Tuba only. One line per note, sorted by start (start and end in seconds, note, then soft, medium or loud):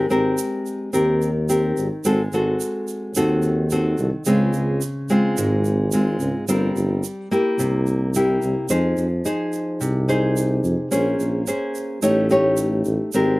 0.10 0.36 G#1 medium
0.94 1.73 D#2 medium
1.77 1.89 G#1 medium
2.04 2.30 G#1 medium
2.32 2.58 G#1 medium
3.15 3.94 D#2 medium
3.99 4.11 C2 medium
4.26 4.52 C#2 medium
4.54 4.80 C#2 medium
5.37 6.16 G#1 medium
6.20 6.33 C#2 medium
6.48 6.74 G1 medium
6.76 7.01 G1 medium
7.58 8.38 C2 medium
8.41 8.55 C2 medium
8.70 8.95 F2 medium
8.97 9.23 F2 medium
9.81 10.60 C2 medium
10.64 10.77 F2 medium
10.92 11.17 A#1 medium
11.19 11.45 A#1 medium
12.02 12.82 A1 medium
12.86 12.99 A1 medium
13.14 13.39 G#1 medium